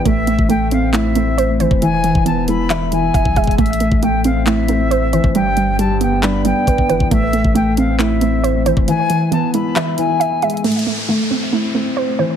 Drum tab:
HH |x-----x-----x-----x-----x-----x-----x-----x-----|x-----x-----x-----x-----x-----x-----x-----x-x-x-|x-x-x-x-----x-----x-----x-----x-----x-----x-----|x-----x-----x-----x-----x-----x-----x-----x-----|
CP |------------------------x-----------------------|------------------------x-----------------------|------------------------x-----------------------|------------------------x-----------------------|
BD |o--------o-----------------------------------o--|---------o--------------------------o--o--o--o--|o--------o-----------------------------------o--|------------------------------------o--o-----o--|

HH |x-----x-----x-----x-----x-----x-----x-----x-----|x-----x-----x-----x-----x-----x-----x-----x-x-x-|x-x-x-------------------------------------------|
CP |------------------------x-----------------------|------------------------x-----------------------|------------------------------------------------|
BD |o--------o-----------------------------------o--|------------------------------------------------|------------------------------------------------|